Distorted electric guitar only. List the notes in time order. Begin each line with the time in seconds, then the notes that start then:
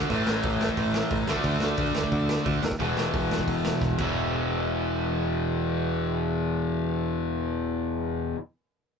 Already playing: A3
0.10 A2 E3 A3
1.27 D3 A3 D4
2.79 E2 B2 E3
3.98 E2 B2 E3